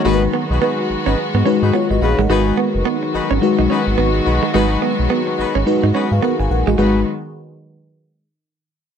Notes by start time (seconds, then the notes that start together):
Already playing: D#3 F#3
0.05 G#1 G#3 B3 D#4 F#4 G#4 A#4 B4
0.13 B4
0.23 muted clean electric guitar stroke
0.33 B3
0.50 B1 B3 D#4 F#4 G#4 B4
0.61 B3 D#4 F#4 G#4 B4
0.78 muted clean electric guitar stroke
0.90 G#1
1.06 G#1 B3 C#4 D#4 F#4 G#4 B4
1.18 muted clean electric guitar stroke
1.34 G#2 B3
1.45 G#3 C#4 D#4 F#4 B4
1.62 G#2 B3 D#4 F#4 G#4 B4
1.74 B3 F4 C#5
1.90 G#1 F#4 D#5, muted clean electric guitar stroke
2.01 A#1 B3 D#4 F#4 G#4 B4 F5
2.18 A1 G#3 A#4 F#5
2.29 G#1 D#3 F#3 G#3 B3 D#4 F#4 G#4 B4
2.47 muted clean electric guitar stroke
2.57 B3
2.75 F#1
2.85 B3
3.03 muted clean electric guitar stroke
3.13 G#1 B3 D#4 F#4 G#4 B4
3.31 G#1 C#4
3.42 G#3 D#4 F#4 B4, muted clean electric guitar stroke
3.59 B1 D#4
3.70 B3 C#4 D#4 F#4 G#4 B4
3.87 G#1
3.98 G#1 B3
4.15 muted clean electric guitar stroke
4.26 B1 B3 D#4 F#4 G#4 B4
4.43 G#3
4.54 G#1 G#3 B3 D#4 F#4 G#4 B4
4.71 muted clean electric guitar stroke
4.82 B3
4.99 B1
5.10 B3
5.27 muted clean electric guitar stroke
5.38 G#1 B3 D#4 F#4 G#4 B4
5.55 G#1 C#4
5.66 G#3 D#4 F#4 B4, muted clean electric guitar stroke
5.83 G#2 D#4
5.94 B3 C#4 D#4 F#4 G#4 B4
6.11 G#2 G#4 F5
6.22 B3 A#4 F#5
6.39 G#1 B4 G#5, muted clean electric guitar stroke
6.50 A#1 A#4 F#5
6.67 A1 G#3 F#4 D#5
6.78 G#1 D#3 F#3 G#3 B3 D#4 F#4 G#4 B4